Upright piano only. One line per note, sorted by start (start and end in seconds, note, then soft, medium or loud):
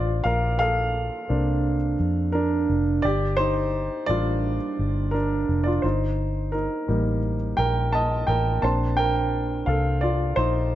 0.00 3.07 F4 medium
0.00 3.07 C5 medium
0.00 3.02 D5 medium
0.24 0.58 A#4 medium
0.24 0.57 F5 medium
0.59 1.96 A4 medium
0.59 1.95 F5 loud
1.29 1.76 A#3 soft
1.29 1.76 C4 soft
1.29 1.77 D4 medium
2.32 3.01 D4 medium
2.32 2.99 A#4 medium
3.02 3.37 G4 medium
3.02 3.39 D5 medium
3.37 4.05 D#4 medium
3.37 4.10 C5 loud
4.06 4.55 G3 soft
4.06 4.55 A#3 soft
4.06 4.56 D4 medium
4.06 5.10 F4 medium
4.06 5.16 D5 loud
5.11 5.63 D4 medium
5.11 5.67 A#4 medium
5.64 5.83 F4 medium
5.64 5.81 D5 medium
5.82 6.50 D#4 medium
5.82 6.55 C5 medium
6.52 6.88 D#4 soft
6.52 7.19 A#4 medium
6.88 7.35 G3 soft
6.88 7.35 A#3 soft
6.88 7.35 D#4 soft
7.57 7.91 A#4 medium
7.57 7.93 G5 medium
7.93 8.26 D#5 medium
7.93 8.29 A5 medium
8.27 8.61 A#4 medium
8.27 8.60 G5 medium
8.62 9.09 A#3 soft
8.62 9.10 C4 soft
8.62 9.10 D4 medium
8.62 8.96 C5 medium
8.62 8.98 A5 medium
8.97 9.64 A#4 medium
8.97 9.63 G5 medium
9.66 10.00 A4 medium
9.66 10.03 F5 medium
10.01 10.35 F4 medium
10.01 10.38 D5 medium
10.36 10.75 D#4 medium
10.36 10.75 C5 medium